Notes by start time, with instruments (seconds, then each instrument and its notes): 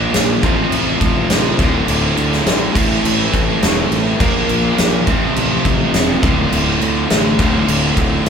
Already playing: distorted electric guitar A#2 F3 A#3 D4 F4 A#4
0.14 fingered electric bass A#1, snare, crash
0.42 fingered electric bass A1, distorted electric guitar F2 C3 F3 A3 C4 F4, kick, crash
0.72 fingered electric bass A1, crash
1.01 fingered electric bass A1, kick, crash
1.29 fingered electric bass A1, overdriven electric guitar F2 C3 F3, snare, crash
1.59 fingered electric bass D1, distorted electric guitar D2 A2 D3 A3 F4, kick, crash
1.88 fingered electric bass D1, crash
2.17 fingered electric bass D2, crash
2.32 snare
2.46 fingered electric bass A1, overdriven electric guitar D2 A2 D3, snare, crash
2.74 fingered electric bass A1, distorted electric guitar A2 E3 A3 C4 E4 A4, kick, crash
3.04 fingered electric bass A1, crash
3.34 fingered electric bass A1, kick, crash
3.62 fingered electric bass E1, overdriven electric guitar A2 E3, snare, crash
3.66 overdriven electric guitar A3
3.92 fingered electric bass A1, crash
4.20 fingered electric bass A#1, distorted electric guitar A#2 F3 A#3 D4 F4 A#4, kick, crash
4.49 fingered electric bass A#1, crash
4.78 fingered electric bass A#1, snare, crash
5.07 fingered electric bass A1, distorted electric guitar F2 C3 F3 A3 C4 F4, kick, crash
5.36 fingered electric bass A1, crash
5.65 fingered electric bass A1, kick, crash
5.94 fingered electric bass E1, overdriven electric guitar F2 C3 F3, snare, crash
6.22 fingered electric bass D1, distorted electric guitar D2 A2 D3 A3 F4, kick, crash
6.52 fingered electric bass D1, crash
6.81 fingered electric bass D2, crash
7.09 fingered electric bass A1, overdriven electric guitar D2 A2 D3, snare, crash
7.38 fingered electric bass D1, distorted electric guitar D2 A2 D3 A3 F4, kick, crash
7.68 fingered electric bass D1, crash
7.97 fingered electric bass D1, kick, crash
8.25 overdriven electric guitar D2